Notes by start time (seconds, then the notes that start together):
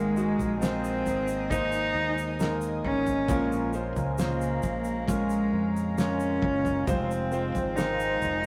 Already playing: G#1 G#2 D#3 G#3 A#3 D#4 A#4 D#5 G#5 D#6
0.16 G#3 A#3 D#4 F#4 G#4, shaker
0.38 A#1, floor tom, shaker
0.60 G#3 A#3 C4 D#4 C5, snare, shaker
0.84 shaker
1.06 G#1, floor tom, shaker
1.28 shaker
1.50 G#3 A#3 D#4 G#4 C5, kick, floor tom, shaker
1.72 shaker
1.94 D#2
2.18 shaker
2.39 G#3 A#3 D#4 G#4 A#4, snare, shaker
2.61 shaker
2.84 G#1 C#4, floor tom
3.07 floor tom, shaker
3.28 A#1 A#2 F3 G#3 C#4 F4 A#4 F5 A#5, kick, floor tom, shaker
3.52 shaker
3.73 G#3 C#4 F4 C5, shaker
3.96 C#2, floor tom, shaker
4.18 G#3 A#3 C#4 F4 C5, snare, shaker
4.41 shaker
4.63 A#1, kick, shaker
4.84 shaker
5.08 G#3 C#4 F4 A#4, kick, floor tom, shaker
5.30 shaker
5.53 F2
5.77 shaker
5.98 G#3 C#4 F4 A#4, snare, shaker
6.20 shaker
6.42 F#1, kick, floor tom
6.65 floor tom, shaker
6.86 F1 F2 C3 G#3 C4 F4 G#4 C5 C6, kick, floor tom, shaker
7.11 shaker
7.32 G#3 C4 F4 C5, shaker
7.55 G#1, floor tom, shaker
7.76 G#3 C4 D#4 F4 A#4, snare, shaker
8.00 shaker
8.22 F1, floor tom, shaker